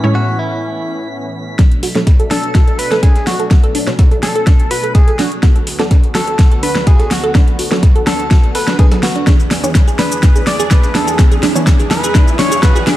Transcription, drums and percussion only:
1.59 kick loud
1.59 snare soft
1.59 closed hi-hat medium
1.71 closed hi-hat soft
1.83 snare medium
1.83 closed hi-hat medium
1.83 open hi-hat loud
1.95 snare soft
2.07 kick loud
2.07 snare loud
2.07 closed hi-hat medium
2.20 closed hi-hat soft
2.31 snare soft
2.31 closed hi-hat medium
2.31 open hi-hat medium
2.44 closed hi-hat soft
2.55 kick loud
2.55 snare soft
2.55 closed hi-hat medium
2.68 closed hi-hat soft
2.79 closed hi-hat medium
2.79 open hi-hat loud
2.91 snare medium
2.91 snare soft
2.91 closed hi-hat soft
3.03 kick loud
3.03 snare loud
3.03 closed hi-hat medium
3.15 snare medium
3.15 closed hi-hat soft
3.27 snare medium
3.27 closed hi-hat medium
3.27 open hi-hat medium
3.40 closed hi-hat soft
3.51 kick loud
3.51 snare medium
3.51 closed hi-hat medium
3.63 closed hi-hat soft
3.75 closed hi-hat medium
3.75 open hi-hat loud
3.87 snare soft
3.87 closed hi-hat soft
3.99 kick loud
3.99 snare loud
3.99 closed hi-hat medium
4.11 closed hi-hat soft
4.23 snare medium
4.23 closed hi-hat medium
4.23 open hi-hat loud
4.35 closed hi-hat soft
4.47 kick loud
4.47 snare medium
4.47 closed hi-hat medium
4.60 closed hi-hat soft
4.71 closed hi-hat medium
4.71 open hi-hat loud
4.84 closed hi-hat soft
4.95 kick loud
4.95 snare loud
4.95 closed hi-hat medium
5.08 closed hi-hat soft
5.19 snare medium
5.19 closed hi-hat medium
5.19 open hi-hat medium
5.32 closed hi-hat soft
5.43 kick loud
5.43 snare medium
5.43 closed hi-hat medium
5.56 closed hi-hat soft
5.67 snare medium
5.67 closed hi-hat medium
5.67 open hi-hat loud
5.80 snare soft
5.80 closed hi-hat soft
5.91 kick loud
5.91 snare loud
5.91 closed hi-hat medium
6.04 closed hi-hat soft
6.15 snare medium
6.15 closed hi-hat medium
6.15 open hi-hat medium
6.27 closed hi-hat soft
6.39 kick loud
6.39 snare medium
6.39 closed hi-hat medium
6.51 closed hi-hat soft
6.63 closed hi-hat medium
6.63 open hi-hat loud
6.75 snare medium
6.75 closed hi-hat soft
6.87 kick loud
6.87 snare loud
6.87 closed hi-hat medium
7.00 snare medium
7.00 closed hi-hat soft
7.11 snare medium
7.11 closed hi-hat medium
7.11 open hi-hat loud
7.24 closed hi-hat soft
7.35 kick loud
7.35 snare medium
7.35 closed hi-hat medium
7.48 closed hi-hat soft
7.59 closed hi-hat medium
7.59 open hi-hat loud
7.71 snare medium
7.71 closed hi-hat soft
7.83 kick loud
7.83 snare loud
7.83 closed hi-hat medium
7.96 closed hi-hat soft
8.07 snare medium
8.07 closed hi-hat medium
8.07 open hi-hat medium
8.20 closed hi-hat soft
8.31 kick loud
8.31 snare medium
8.31 closed hi-hat medium
8.44 closed hi-hat soft
8.55 snare loud
8.55 closed hi-hat medium
8.55 open hi-hat loud
8.68 snare medium
8.68 snare loud
8.68 closed hi-hat medium
8.79 kick loud
8.79 snare loud
8.79 closed hi-hat medium
8.91 snare loud
8.91 closed hi-hat medium
8.91 closed hi-hat soft
9.03 snare medium
9.03 snare soft
9.03 closed hi-hat medium
9.03 open hi-hat medium
9.16 closed hi-hat soft
9.27 kick loud
9.27 snare medium
9.27 closed hi-hat medium
9.27 shaker medium
9.40 closed hi-hat soft
9.40 shaker soft
9.51 snare medium
9.51 closed hi-hat medium
9.51 open hi-hat loud
9.64 closed hi-hat soft
9.64 shaker medium
9.75 kick loud
9.75 snare loud
9.75 snare medium
9.75 closed hi-hat medium
9.75 shaker medium
9.88 closed hi-hat soft
9.88 shaker soft
9.99 snare medium
9.99 closed hi-hat medium
9.99 open hi-hat loud
10.12 closed hi-hat soft
10.12 shaker medium
10.23 kick loud
10.23 snare medium
10.23 closed hi-hat medium
10.23 shaker medium
10.36 closed hi-hat soft
10.36 shaker soft
10.47 snare medium
10.47 closed hi-hat medium
10.47 open hi-hat loud
10.60 snare medium
10.60 closed hi-hat soft
10.60 shaker medium
10.71 kick loud
10.71 snare medium
10.71 snare loud
10.71 closed hi-hat medium
10.71 shaker medium
10.83 snare medium
10.83 closed hi-hat soft
10.83 shaker soft
10.95 snare medium
10.95 closed hi-hat medium
10.95 open hi-hat medium
11.08 closed hi-hat soft
11.08 shaker medium
11.19 kick loud
11.19 snare medium
11.19 closed hi-hat medium
11.19 shaker medium
11.31 closed hi-hat soft
11.31 shaker soft
11.43 snare medium
11.43 closed hi-hat medium
11.43 open hi-hat loud
11.56 closed hi-hat soft
11.56 shaker medium
11.67 kick loud
11.67 snare medium
11.67 snare loud
11.67 closed hi-hat loud
11.67 closed hi-hat medium
11.67 shaker medium
11.80 closed hi-hat soft
11.80 shaker soft
11.91 snare medium
11.91 closed hi-hat medium
11.91 open hi-hat medium
12.04 closed hi-hat soft
12.04 shaker medium
12.15 kick loud
12.15 snare medium
12.15 closed hi-hat medium
12.15 shaker medium
12.28 closed hi-hat soft
12.28 shaker soft
12.39 snare medium
12.39 closed hi-hat medium
12.39 open hi-hat loud
12.52 closed hi-hat soft
12.52 shaker medium
12.63 kick loud
12.63 snare loud
12.63 snare medium
12.63 closed hi-hat medium
12.63 shaker medium
12.76 closed hi-hat soft
12.76 shaker soft
12.87 snare medium
12.87 closed hi-hat medium
12.87 open hi-hat medium

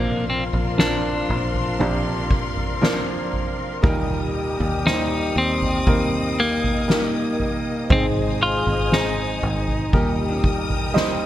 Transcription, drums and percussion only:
0.53 floor tom medium
0.79 snare loud
1.29 floor tom medium
1.54 floor tom medium
1.80 floor tom medium
2.31 kick medium
2.57 floor tom medium
2.83 snare loud
3.33 floor tom medium
3.84 kick loud
3.84 floor tom loud
4.60 floor tom medium
4.87 snare loud
5.62 floor tom medium
5.87 kick medium
5.87 floor tom medium
6.64 floor tom medium
6.90 snare loud
7.40 floor tom medium
7.90 kick loud
7.90 floor tom loud
8.67 floor tom medium
8.92 snare loud
9.43 floor tom medium
9.68 floor tom medium
9.93 kick medium
9.93 floor tom medium
10.44 kick medium
10.70 floor tom medium
10.96 snare loud

